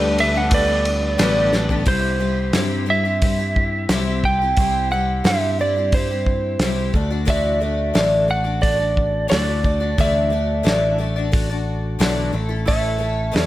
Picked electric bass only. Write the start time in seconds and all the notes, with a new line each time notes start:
Already playing: D2
1.20 A1
1.87 C2
2.54 G2
3.89 C2
4.58 C2
5.25 G2
6.59 C2
6.95 D2
7.96 A1
9.32 D2
9.99 D2
10.65 A1
12.00 B1
12.33 A1
13.35 E2